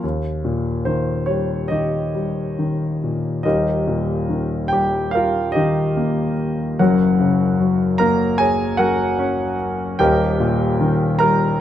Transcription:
0.03 3.40 D#2 soft
0.44 2.09 A#2 soft
0.85 1.69 D#3 soft
0.85 1.29 C5 medium
1.26 2.13 G3 soft
1.26 1.71 C#5 medium
1.68 2.57 D#3 soft
1.68 3.41 G4 soft
1.68 2.97 D#5 medium
2.14 3.41 G3 soft
2.59 3.42 D#3 soft
3.04 3.44 A#2 soft
3.43 6.75 D#1 soft
3.43 6.75 D#2 medium
3.43 4.67 D#4 soft
3.43 4.67 G4 soft
3.43 4.67 A#4 soft
3.43 4.74 D#5 medium
3.87 5.51 A#2 soft
4.29 5.55 D#3 soft
4.68 5.13 G5 medium
4.72 6.35 G3 soft
4.72 5.11 G4 medium
5.11 5.53 F4 soft
5.11 5.53 A#4 soft
5.11 5.55 F5 medium
5.52 6.34 D#4 soft
5.52 6.34 G4 soft
5.52 6.33 D#5 medium
5.56 6.76 D#3 soft
5.97 6.77 A#3 soft
6.79 9.96 F#1 medium
6.79 9.96 F#2 medium
6.79 7.96 F#4 soft
6.79 7.96 A#4 soft
6.79 7.96 C#5 soft
6.79 8.04 F#5 medium
7.19 8.74 C#3 medium
7.60 8.77 F#3 soft
7.98 9.55 A#3 medium
7.98 8.36 A#4 medium
7.98 8.40 A#5 medium
8.38 8.76 G#4 soft
8.38 8.76 C#5 medium
8.38 8.75 G#5 medium
8.77 9.96 F#3 soft
8.77 9.55 F#4 medium
8.77 9.55 A#4 medium
8.77 9.54 F#5 medium
9.19 9.97 C#4 medium
9.99 11.61 D#1 medium
9.99 11.61 D#2 medium
9.99 11.17 G4 medium
9.99 11.17 A#4 medium
9.99 11.17 D#5 medium
9.99 11.24 G5 medium
10.40 11.61 A#2 medium
10.80 11.61 D#3 medium
11.19 11.61 G3 soft
11.19 11.58 A#4 medium
11.19 11.57 A#5 medium

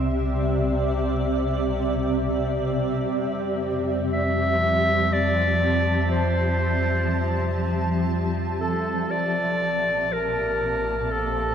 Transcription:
0.00 3.07 C2 medium
0.00 3.12 C3 medium
0.00 9.21 C3 medium
0.00 9.21 G3 medium
0.00 10.85 C4 medium
0.00 11.55 G4 medium
0.00 4.04 D5 medium
0.00 10.70 E5 medium
3.11 9.06 F2 medium
3.11 9.12 F3 medium
3.98 11.55 A5 medium
4.13 5.15 E5 loud
5.13 6.10 D5 loud
6.11 7.57 C5 medium
8.61 9.13 A4 medium
9.10 11.55 A#1 medium
9.10 11.55 A#2 medium
9.10 10.14 D5 medium
9.72 11.55 A#3 medium
10.13 11.13 A#4 medium
10.33 11.55 C5 medium
10.83 11.55 D5 medium
11.11 11.55 A4 medium

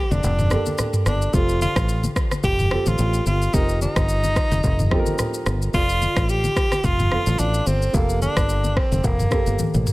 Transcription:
0.00 0.50 A#3 medium
0.00 0.13 G4 loud
0.11 0.20 F1 loud
0.11 0.94 D4 loud
0.11 high conga medium
0.11 shaker medium
0.23 0.55 F1 loud
0.23 low conga medium
0.23 shaker medium
0.39 mid tom medium
0.39 high conga medium
0.39 shaker soft
0.50 1.01 A#3 medium
0.50 1.01 G4 medium
0.50 1.02 A4 medium
0.50 cross-stick medium
0.50 mid tom medium
0.50 shaker soft
0.66 high conga medium
0.66 shaker medium
0.78 cross-stick medium
0.78 low conga medium
0.78 shaker medium
0.93 mid tom medium
0.93 shaker medium
1.06 1.27 G1 medium
1.06 1.36 D4 medium
1.06 cross-stick medium
1.06 high conga medium
1.06 shaker medium
1.22 shaker soft
1.32 1.66 F1 loud
1.32 2.01 F3 medium
1.32 2.01 C4 medium
1.32 1.61 F4 loud
1.32 2.01 G4 medium
1.32 2.02 A4 medium
1.32 kick loud
1.32 shaker medium
1.49 shaker medium
1.62 2.13 F4 medium
1.62 high conga medium
1.62 shaker medium
1.76 2.06 A1 medium
1.76 kick loud
1.76 cross-stick loud
1.76 shaker soft
1.89 shaker medium
2.04 high conga medium
2.04 shaker medium
2.16 kick medium
2.16 cross-stick loud
2.16 shaker medium
2.31 cross-stick medium
2.31 high conga medium
2.31 shaker soft
2.44 2.76 F1 loud
2.44 2.89 G4 loud
2.44 kick medium
2.44 low conga medium
2.44 shaker medium
2.59 mid tom medium
2.59 high conga medium
2.59 shaker soft
2.70 3.21 F3 medium
2.70 3.21 C4 medium
2.70 3.22 G4 medium
2.70 3.22 A4 medium
2.70 cross-stick medium
2.86 2.96 A1 medium
2.86 3.27 F4 loud
2.86 high conga medium
2.86 shaker medium
2.98 3.19 A1 medium
2.98 low conga medium
2.98 shaker medium
3.14 shaker medium
3.26 3.47 G1 medium
3.26 3.56 F4 loud
3.26 high conga medium
3.26 shaker medium
3.42 shaker soft
3.53 3.86 F1 loud
3.53 4.21 F3 medium
3.53 4.21 C4 medium
3.53 3.81 D#4 loud
3.53 4.22 G4 medium
3.53 4.22 A#4 medium
3.53 kick loud
3.53 shaker medium
3.69 shaker medium
3.82 5.43 D#4 loud
3.82 high conga medium
3.82 shaker medium
3.96 4.38 G1 medium
3.96 kick loud
3.96 cross-stick loud
3.96 shaker soft
4.09 shaker medium
4.24 high conga medium
4.24 shaker medium
4.36 kick medium
4.36 cross-stick loud
4.36 shaker medium
4.51 4.61 F1 loud
4.51 high conga medium
4.51 shaker soft
4.64 4.96 F1 loud
4.64 kick medium
4.64 low conga medium
4.64 shaker medium
4.79 mid tom medium
4.79 high conga medium
4.79 shaker soft
4.90 5.41 F3 medium
4.90 5.42 C4 medium
4.90 5.42 G4 medium
4.90 4.99 A4 medium
4.90 kick medium
4.90 cross-stick medium
4.99 5.46 A#4 loud
5.06 high conga medium
5.06 shaker medium
5.19 cross-stick medium
5.19 low conga medium
5.19 shaker medium
5.34 shaker medium
5.46 5.67 G1 loud
5.46 cross-stick medium
5.46 high conga medium
5.46 shaker medium
5.62 shaker soft
5.73 6.06 F1 loud
5.73 6.41 F3 medium
5.73 6.41 F4 medium
5.73 6.31 F4 loud
5.73 6.42 A4 medium
5.73 6.42 D5 medium
5.73 kick loud
5.73 shaker medium
5.89 shaker medium
6.02 high conga medium
6.02 shaker medium
6.17 6.46 A1 medium
6.17 kick loud
6.17 cross-stick loud
6.17 shaker soft
6.29 6.86 G4 loud
6.29 shaker medium
6.44 high conga medium
6.44 shaker medium
6.56 kick medium
6.56 cross-stick loud
6.56 shaker medium
6.72 cross-stick medium
6.72 high conga medium
6.72 shaker medium
6.84 7.16 F1 medium
6.84 7.41 F4 loud
6.84 kick medium
6.84 low conga medium
6.84 shaker medium
6.99 mid tom medium
6.99 high conga medium
6.99 shaker soft
7.10 7.61 F3 medium
7.10 7.62 F4 medium
7.10 7.62 A4 medium
7.10 7.63 F5 medium
7.10 cross-stick medium
7.26 7.36 A1 medium
7.26 high conga medium
7.26 shaker medium
7.39 7.60 A1 loud
7.39 7.68 D4 loud
7.39 low conga medium
7.39 shaker medium
7.54 shaker medium
7.67 7.87 G1 medium
7.67 7.96 C4 loud
7.67 high conga medium
7.67 shaker medium
7.82 shaker soft
7.93 8.26 F1 loud
7.93 8.61 A#3 medium
7.93 8.22 A#3 loud
7.93 8.62 G4 medium
7.93 8.62 A4 medium
7.93 kick loud
7.93 shaker medium
8.09 shaker medium
8.22 8.79 D4 loud
8.22 high conga medium
8.22 shaker medium
8.37 8.78 G1 medium
8.37 kick loud
8.37 cross-stick loud
8.37 shaker soft
8.49 shaker medium
8.64 high conga medium
8.64 shaker medium
8.77 9.06 C4 medium
8.77 kick medium
8.77 cross-stick loud
8.92 9.01 F1 loud
8.92 high conga medium
8.92 shaker medium
9.04 9.25 F1 loud
9.04 9.87 A#3 loud
9.04 kick medium
9.04 low conga medium
9.04 shaker medium
9.19 mid tom medium
9.19 high conga medium
9.19 shaker soft
9.30 9.82 A#3 medium
9.30 9.82 G4 medium
9.30 9.83 A4 medium
9.30 kick medium
9.30 cross-stick medium
9.30 mid tom medium
9.30 shaker soft
9.46 9.56 G1 medium
9.46 high conga medium
9.46 shaker medium
9.59 high tom medium
9.59 low conga medium
9.59 shaker medium
9.74 9.84 A1 medium
9.74 mid tom medium
9.74 shaker medium
9.87 mid tom loud
9.87 high conga medium
9.87 shaker medium

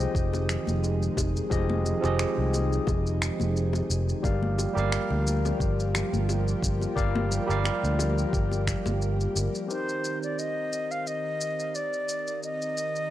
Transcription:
0.00 4.20 D#3 medium
0.00 1.50 F3 medium
0.00 4.20 G#3 medium
0.00 1.50 C4 medium
0.00 1.51 G4 medium
0.00 1.51 G#4 medium
0.00 1.52 D#5 loud
0.00 1.49 G5 medium
0.00 shaker soft
0.15 0.56 F1 medium
0.15 kick loud
0.15 shaker soft
0.33 high bongo medium
0.33 shaker soft
0.49 finger snap medium
0.49 low conga medium
0.49 shaker medium
0.67 1.08 F1 medium
0.67 high conga medium
0.67 shaker soft
0.84 high bongo soft
0.84 shaker soft
1.03 shaker soft
1.17 1.39 F1 medium
1.17 kick loud
1.17 high bongo medium
1.17 shaker medium
1.36 shaker soft
1.50 1.92 F1 medium
1.50 1.99 F3 medium
1.50 1.99 C4 medium
1.50 1.99 G4 medium
1.50 1.99 G#4 medium
1.50 2.00 D#5 loud
1.50 kick loud
1.50 shaker soft
1.69 high bongo soft
1.69 high conga medium
1.85 low conga medium
1.85 shaker medium
2.01 2.24 F1 loud
2.01 4.19 F3 medium
2.01 4.19 C4 medium
2.01 4.20 G4 medium
2.01 4.21 G#4 medium
2.01 high bongo medium
2.01 shaker soft
2.06 4.21 D#5 medium
2.19 finger snap medium
2.19 shaker soft
2.38 2.78 C2 loud
2.54 high bongo medium
2.54 high conga medium
2.54 shaker medium
2.73 shaker soft
2.87 3.29 F1 medium
2.87 kick loud
2.87 high bongo medium
2.87 shaker soft
3.07 shaker soft
3.22 finger snap medium
3.22 low conga medium
3.22 shaker medium
3.40 3.80 F1 medium
3.40 high bongo soft
3.40 high conga medium
3.40 shaker soft
3.57 shaker soft
3.73 high bongo medium
3.73 shaker soft
3.90 4.12 F1 medium
3.90 shaker medium
4.09 shaker soft
4.22 4.65 G1 medium
4.22 9.65 F3 medium
4.22 4.71 G3 medium
4.22 9.65 A#3 medium
4.22 4.72 G4 medium
4.22 9.65 G4 medium
4.22 4.72 A#4 medium
4.22 4.72 D5 medium
4.22 4.73 F5 medium
4.22 kick loud
4.22 high bongo soft
4.22 shaker soft
4.43 high conga medium
4.58 high bongo medium
4.58 low conga medium
4.58 shaker medium
4.74 4.96 G1 loud
4.74 6.92 G3 medium
4.74 6.92 G4 medium
4.74 6.93 A#4 medium
4.74 6.93 D5 medium
4.74 shaker soft
4.79 6.94 F5 loud
4.92 finger snap medium
4.92 shaker soft
5.10 5.51 D2 medium
5.10 high bongo soft
5.27 high conga medium
5.27 shaker medium
5.45 high bongo medium
5.45 shaker soft
5.60 6.01 G1 medium
5.60 kick loud
5.60 shaker soft
5.80 shaker soft
5.95 finger snap medium
5.95 high bongo soft
5.95 low conga medium
5.95 shaker medium
6.13 6.53 G1 medium
6.13 high conga medium
6.13 shaker soft
6.29 high bongo medium
6.29 shaker soft
6.48 shaker soft
6.62 6.85 G1 medium
6.62 kick medium
6.62 shaker medium
6.81 high bongo medium
6.81 shaker soft
6.95 7.38 G1 loud
6.95 7.44 G3 medium
6.95 7.44 G4 medium
6.95 7.45 A#4 medium
6.95 7.45 D5 medium
6.95 7.45 F5 loud
6.95 kick loud
6.95 shaker soft
7.15 high bongo medium
7.15 high conga medium
7.31 low conga medium
7.31 shaker medium
7.47 7.69 G1 medium
7.47 9.64 G3 medium
7.47 9.65 G4 medium
7.47 9.66 A#4 medium
7.47 9.66 D5 medium
7.47 shaker soft
7.51 9.67 F5 loud
7.64 finger snap medium
7.64 high bongo medium
7.64 shaker soft
7.84 8.24 D2 medium
7.84 shaker soft
7.99 high bongo medium
7.99 high conga medium
7.99 shaker medium
8.18 shaker soft
8.33 8.74 G1 medium
8.33 kick loud
8.33 shaker soft
8.52 high bongo medium
8.52 shaker soft
8.67 finger snap medium
8.67 kick medium
8.67 low conga medium
8.67 shaker medium
8.86 9.26 G1 medium
8.86 high bongo medium
8.86 high conga medium
8.86 shaker soft
9.02 shaker soft
9.20 shaker soft
9.36 9.47 G1 medium
9.36 high bongo medium
9.36 shaker medium
9.55 shaker soft
9.67 13.10 D#3 medium
9.67 13.10 C4 medium
9.67 13.10 G4 medium
9.67 13.10 A#4 medium
9.67 13.10 C5 medium
9.67 shaker soft
9.71 13.10 D#4 medium
9.71 10.19 C5 medium
9.89 shaker soft
10.04 shaker medium
10.23 10.40 D5 medium
10.23 shaker soft
10.39 10.93 D#5 medium
10.39 shaker soft
10.73 shaker medium
10.91 11.09 F5 medium
10.91 shaker soft
11.07 11.77 D#5 medium
11.07 shaker soft
11.41 shaker medium
11.59 shaker soft
11.75 12.43 D5 medium
11.75 shaker soft
11.93 shaker soft
12.09 shaker medium
12.27 shaker soft
12.43 13.10 D#5 loud
12.43 shaker soft
12.62 shaker soft
12.77 shaker medium
12.96 shaker soft

